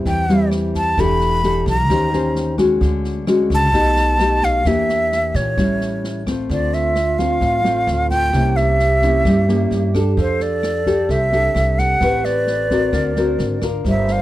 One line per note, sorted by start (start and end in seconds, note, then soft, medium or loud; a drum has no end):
0.00 0.25 G3 medium
0.00 0.25 C4 medium
0.00 0.26 E4 medium
0.05 0.93 E2 medium
0.05 0.95 E3 medium
0.05 0.49 G5 loud
0.05 kick medium
0.05 snare soft
0.29 0.94 G3 medium
0.29 0.94 C4 medium
0.29 0.94 E4 medium
0.29 snare soft
0.51 cross-stick medium
0.51 snare soft
0.74 1.02 A5 medium
0.74 kick soft
0.74 snare soft
0.97 1.62 E1 medium
0.97 1.87 E3 medium
0.97 1.40 D4 soft
0.97 1.40 G4 medium
0.97 1.40 A4 medium
0.97 1.68 B5 loud
0.97 kick medium
0.97 cross-stick medium
0.97 snare soft
1.20 snare soft
1.43 1.75 D4 medium
1.43 1.75 G4 medium
1.43 1.75 A4 medium
1.43 snare soft
1.66 1.89 B1 medium
1.66 2.56 A#5 loud
1.66 kick soft
1.66 snare soft
1.89 2.77 D#2 medium
1.89 2.79 D#3 medium
1.89 2.09 C#4 medium
1.89 2.09 G4 medium
1.89 2.09 C5 medium
1.89 kick soft
1.89 cross-stick medium
1.89 snare soft
2.13 2.55 C#4 medium
2.13 2.55 G4 medium
2.13 2.55 C5 medium
2.13 snare soft
2.35 snare soft
2.58 3.23 G#3 medium
2.58 3.23 C#4 medium
2.58 3.24 F#4 medium
2.58 kick soft
2.58 cross-stick soft
2.58 snare soft
2.81 3.46 D2 medium
2.81 3.71 D3 medium
2.81 kick soft
2.81 snare soft
3.04 snare soft
3.27 3.71 G#3 medium
3.27 3.71 C#4 medium
3.27 3.72 F#4 medium
3.27 cross-stick medium
3.27 snare soft
3.50 3.73 C#2 medium
3.50 kick soft
3.50 snare soft
3.54 4.46 A5 loud
3.73 4.61 B1 medium
3.73 4.63 B2 soft
3.73 4.15 A3 medium
3.73 4.16 D#4 medium
3.73 4.16 G4 medium
3.73 kick soft
3.73 snare soft
3.96 snare soft
4.19 4.62 A3 medium
4.19 4.62 D#4 medium
4.19 4.62 G4 medium
4.19 cross-stick medium
4.19 snare soft
4.42 4.68 F5 loud
4.42 kick soft
4.42 snare soft
4.65 5.30 E2 medium
4.65 5.55 E3 medium
4.65 5.54 A#3 medium
4.65 5.54 D4 soft
4.65 5.54 G4 medium
4.65 5.37 E5 loud
4.65 kick soft
4.65 cross-stick medium
4.65 snare soft
4.89 snare soft
5.12 snare soft
5.34 5.59 A#2 medium
5.34 6.27 C#5 medium
5.34 kick soft
5.34 snare soft
5.57 6.45 A1 medium
5.57 6.47 A2 medium
5.57 6.23 G3 medium
5.57 6.23 C#4 medium
5.57 6.23 E4 medium
5.57 kick soft
5.57 cross-stick soft
5.57 snare soft
5.81 snare soft
6.04 snare soft
6.26 6.92 A3 medium
6.26 6.92 C4 medium
6.26 6.92 F4 medium
6.26 kick soft
6.26 cross-stick medium
6.26 snare soft
6.48 7.37 D2 medium
6.48 7.39 D3 soft
6.48 8.34 F4 medium
6.48 6.75 D5 medium
6.48 kick soft
6.48 snare soft
6.73 7.20 E5 medium
6.73 snare soft
6.95 cross-stick medium
6.95 snare soft
7.18 7.61 A3 medium
7.18 7.61 C4 medium
7.18 7.61 F4 medium
7.18 8.09 F5 medium
7.18 kick soft
7.18 snare soft
7.41 7.84 A1 medium
7.41 8.31 A2 soft
7.41 kick medium
7.41 snare soft
7.64 8.29 A3 medium
7.64 8.29 C4 medium
7.64 8.30 F4 medium
7.64 snare soft
7.87 8.30 D2 medium
7.87 cross-stick medium
7.87 snare soft
8.10 8.58 G5 loud
8.10 kick soft
8.10 snare soft
8.33 9.21 C2 medium
8.33 9.23 C3 medium
8.33 8.79 A#3 soft
8.33 8.79 C#4 medium
8.33 8.79 E4 medium
8.33 10.20 G4 medium
8.33 kick soft
8.33 cross-stick soft
8.33 snare soft
8.56 9.94 E5 medium
8.56 snare soft
8.79 snare soft
9.02 9.45 A#3 medium
9.02 9.45 C#4 medium
9.02 9.45 E4 medium
9.02 kick soft
9.02 snare soft
9.25 9.68 G2 medium
9.25 10.15 G3 medium
9.25 kick soft
9.25 cross-stick soft
9.25 snare soft
9.48 9.90 A#3 medium
9.48 9.91 C#4 medium
9.48 9.91 E4 medium
9.48 snare soft
9.71 10.14 G2 medium
9.71 snare soft
9.94 10.83 D4 medium
9.94 10.83 G4 medium
9.94 10.83 A4 medium
9.94 kick soft
9.94 cross-stick medium
9.94 snare soft
10.17 11.05 F2 medium
10.17 11.07 F3 soft
10.17 11.74 A4 medium
10.17 10.44 C5 medium
10.17 kick soft
10.17 snare soft
10.40 11.12 D5 medium
10.40 snare soft
10.63 cross-stick medium
10.63 snare soft
10.86 11.28 D4 medium
10.86 11.29 G4 medium
10.86 11.29 A4 medium
10.86 kick soft
10.86 snare soft
11.09 11.52 C2 medium
11.09 11.99 C3 medium
11.09 11.80 E5 loud
11.09 kick soft
11.09 snare soft
11.32 11.97 D4 medium
11.32 11.98 G4 medium
11.32 11.98 A4 medium
11.32 snare soft
11.54 11.97 C2 medium
11.54 cross-stick medium
11.54 snare soft
11.78 12.26 F#5 loud
11.78 kick soft
11.78 snare soft
12.00 12.89 A1 medium
12.00 12.91 A3 soft
12.00 12.67 C4 medium
12.00 12.67 G4 medium
12.00 12.95 B4 loud
12.00 12.67 B4 medium
12.00 kick soft
12.00 cross-stick soft
12.00 snare soft
12.24 13.62 D5 loud
12.24 snare soft
12.47 snare soft
12.70 13.12 C4 medium
12.70 13.13 F#4 medium
12.70 13.13 A#4 medium
12.70 kick soft
12.70 snare soft
12.93 13.36 D2 medium
12.93 13.82 D3 medium
12.93 13.62 A#4 medium
12.93 kick soft
12.93 cross-stick medium
12.93 snare soft
13.16 13.58 C4 medium
13.16 13.59 F#4 medium
13.16 13.59 A#4 medium
13.16 snare soft
13.39 13.81 G#1 medium
13.39 snare soft
13.61 14.22 D4 medium
13.61 14.22 F4 soft
13.61 14.22 A#4 medium
13.61 kick soft
13.61 cross-stick medium
13.61 snare soft
13.84 14.22 G1 medium
13.84 14.22 G3 medium
13.84 14.22 C5 loud
13.84 kick medium
13.84 snare soft
13.89 14.14 E5 medium
14.07 snare soft
14.12 14.22 F5 medium